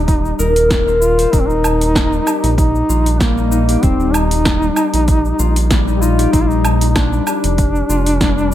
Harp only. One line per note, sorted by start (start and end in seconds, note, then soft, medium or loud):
0.00 1.38 G3 medium
0.00 0.87 C4 loud
0.00 1.08 D#4 medium
0.00 0.41 F4 medium
0.00 2.12 G4 medium
0.39 0.70 A#4 loud
0.70 2.82 A#4 loud
0.87 1.32 C4 loud
1.18 3.16 C5 loud
1.33 3.82 C4 loud
2.12 3.19 G3 medium
2.26 3.68 G4 medium
2.89 5.39 F4 medium
3.20 4.61 G3 loud
3.37 3.51 D#4 medium
3.51 5.87 D#4 loud
3.69 4.76 G4 medium
3.83 6.32 C4 loud
4.62 5.69 G3 medium
4.77 6.18 G4 medium
5.39 7.89 F4 medium
5.70 6.38 G3 loud
5.87 6.01 D#4 medium
6.01 8.43 D#4 loud
6.18 7.27 G4 medium
6.33 8.54 C4 loud
7.12 8.20 G3 medium
7.27 8.54 G4 medium
7.89 8.54 F4 medium
8.21 8.54 G3 loud
8.37 8.52 D4 medium